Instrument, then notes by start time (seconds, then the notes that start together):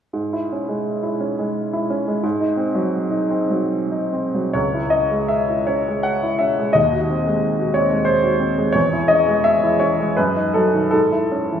upright piano
0.13 G#2
0.33 E4
0.52 C#4
0.69 G#3
1.03 E4
1.20 C#4
1.39 G#3
1.73 E4
1.90 C#4
2.08 G#3
2.23 G#2
2.41 D#4
2.57 C4
2.75 F#3
3.11 D#4
3.30 C4
3.50 F#3
3.91 D#4
4.13 C4
4.35 F#3
4.53 C#2 C#5
4.74 E4
4.90 C#4 D#5
5.11 G#3
5.28 E5
5.50 E4
5.67 C#4 C#5
5.88 G#3
6.03 F#5
6.23 E4
6.39 C#4 E5
6.59 G#3
6.73 D#2 D#5
6.93 F#4
7.10 C4
7.27 G#3
7.59 F#4
7.74 C4 C#5
7.91 G#3
8.05 C5
8.24 F#4
8.40 C4
8.58 G#3
8.72 E2 C#5
8.93 E4
9.08 C#4 D#5
9.28 G#3
9.44 E5
9.64 E4
9.80 C#4 C#5
10.00 G#3
10.17 F#2 B4
10.37 D#4
10.54 F#3 A4
10.74 D#3
10.91 G#2 A4
11.12 E4
11.32 C#4
11.52 E3